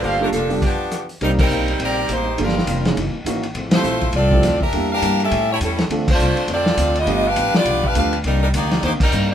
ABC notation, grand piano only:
X:1
M:4/4
L:1/8
Q:"Swing" 1/4=205
K:Gm
V:1 name="Grand piano"
z [G,B,DFA] z [G,=B,DFG] z4 | [G,CEBd]4- [G,CEBd] z3 | [G,B,DFA] z2 [=E,B,^C_E_A] z2 [=E,^A,C^D^F] z | z [F,A,C=EG] z3 [F,A,CEG] z2 |
[G,B,D=EG]4 z4 | [A,CDFA] z6 z | [A,=B,DFG] z4 z [A,B,DFG] z | z8 |]